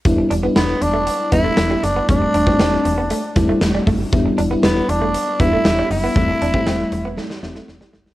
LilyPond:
<<
  \new Staff \with { instrumentName = "Tenor saxophone" } { \time 4/4 \key e \minor \tempo 4 = 118 r4 b8 d'4 e'4 d'8 | d'2. r4 | r4 b8 d'4 e'4 e'8~ | e'2~ e'8 r4. | }
  \new Staff \with { instrumentName = "FM electric piano" } { \time 4/4 \key e \minor <g b d' e'>8 r16 <g b d' e'>4. r16 <g b d' e'>4~ <g b d' e'>16 r16 | <g a c' d'>8 r16 <g a c' d'>4. r16 <g a c' e'>4~ <g a c' e'>16 r16 | <g b d' e'>8 r16 <g b d' e'>4. r16 <g b d' e'>4~ <g b d' e'>16 r16 | <g a c' e'>8 r16 <g a c' e'>4. r16 <g a c' e'>4~ <g a c' e'>16 r16 | }
  \new Staff \with { instrumentName = "Clean electric guitar" } { \time 4/4 \key e \minor r8 d'16 b16 b16 r8 a16 r8 b16 a16 r16 g16 r16 b16 | r8 d'16 c'16 c'16 r8 b16 a16 r8 a16 r16 g16 a16 r16 | r8 d'16 b16 b16 r8 a16 r8 b16 a16 r16 g16 r16 b16 | r8 d'16 c'16 c'16 r8 b16 a16 r8 a16 r16 g16 a16 r16 | }
  \new Staff \with { instrumentName = "FM bass" } { \clef bass \time 4/4 \key e \minor e,,8 e,,8 e,,8 e,,8. r16 e,,8 e,,8 fis,,8 | e,,8 e,,8 e,,8 e,,8. r16 e,,8 e,,8 fis,,8 | e,,8 e,,8 e,,8 e,,8. r16 e,,8 e,,8 fis,,8 | e,,8 e,,8 e,,8 e,,8. r16 e,,8 e,,8 fis,,8 | }
  \new DrumStaff \with { instrumentName = "Drums" } \drummode { \time 4/4 <hh bd>8 hh8 <hh sn>8 hh8 hh8 <hh bd>8 <hh sn>8 hh8 | <hh bd>8 hh16 bd16 <hh sn>8 hh8 hh8 <hh bd>8 <hh sn>8 <hho bd>8 | <hh bd>8 hh8 <hh sn>8 hh8 hh8 <hh bd>8 <hh sn>8 hho8 | <hh bd>8 hh16 bd16 <hh sn>8 hh8 sn16 sn16 sn16 sn16 sn16 sn16 sn16 sn16 | }
>>